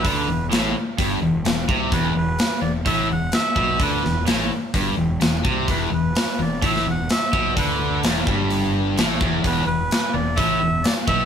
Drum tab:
HH |o---o---o---o---|o---o---o---o---|o---o---o---o---|o---o---o---o---|
SD |----o-------o---|----o-------o---|--o-o-------o---|----o----o--o---|
BD |o-------o-----o-|o-------o-----o-|o-------o-----o-|o-------o-----o-|

HH |o---o---o---o---|o---o---o---o---|
SD |----o-------o---|----o-------o---|
BD |o-----o-------o-|o-------o-----o-|